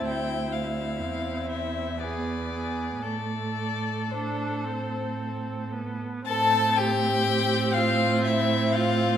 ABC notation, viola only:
X:1
M:3/4
L:1/8
Q:1/4=60
K:Am
V:1 name="Viola"
C2 C2 B,2 | A,2 D C2 B, | C6 |]